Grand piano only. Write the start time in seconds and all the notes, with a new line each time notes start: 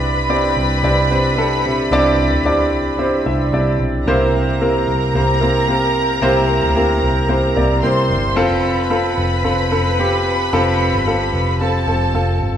Already playing: C3 C4 D4 E4 G4 D5
0.29 C4 D4 E4 G4 D5
0.84 C4 D4 E4 G4 D5
1.11 C4 D4 E4 G4 C5
1.38 C4 D4 E4 G4 A4
1.66 C3
1.92 C4 D4 E4 G4 D5
2.45 C4 D4 E4 G4 D5
2.99 C4 D4 E4 G4 C5
3.26 C4 D4 E4 G4 E5
3.53 C4 D4 E4 G4 D5
4.07 C3 A#3 C4 E4 G4 C5
4.61 A#3 C4 E4 G4 A#4
5.15 A#3 C4 E4 G4 C5
5.41 A#3 C4 E4 G4 C5
5.68 A#3 C4 E4 G4 C5
6.22 C3 A#3 C4 E4 G4 C5
6.76 A#3 C4 E4 G4 A#4
7.29 A#3 C4 E4 G4 C5
7.56 A#3 C4 E4 G4 D5
7.83 A#3 C4 E4 G4 C5
8.36 C4 F4 A4
8.90 C4 F4 A4
9.44 C4 F4 A4
9.72 C4 F4 A4
10.00 C4 F4 G4
10.53 C4 F4 A4
11.07 C4 F4 A4
11.61 C4 F4 A4
11.88 C4 F4 A4
12.14 C4 F4 A4